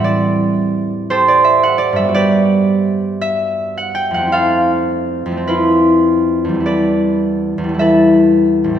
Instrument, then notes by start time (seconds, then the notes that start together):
harp
Already playing: A2 G3 A3 C4 A4 E5
0.00 E4
0.04 D5
1.10 G4 A4 C5
1.28 D5
1.44 E5
1.63 F#5
1.78 D5
1.93 G2 E5
1.98 G3
2.04 B3
2.09 F#4
2.14 G4 B4 D5
3.21 E5
3.77 F#5
3.95 G5
4.11 F2 F#5
4.16 A3
4.22 C4
4.27 E4
4.32 A4 C5 F5
5.26 F2
5.32 A3
5.37 C4
5.47 E4 F4 B4
6.45 E2
6.49 G3
6.54 A3
6.60 E4
6.66 A4 B4 D5
7.58 E2
7.64 G3
7.69 A3
7.74 E4
7.79 A4 B4 E5
8.64 A1
8.70 G3
8.74 C4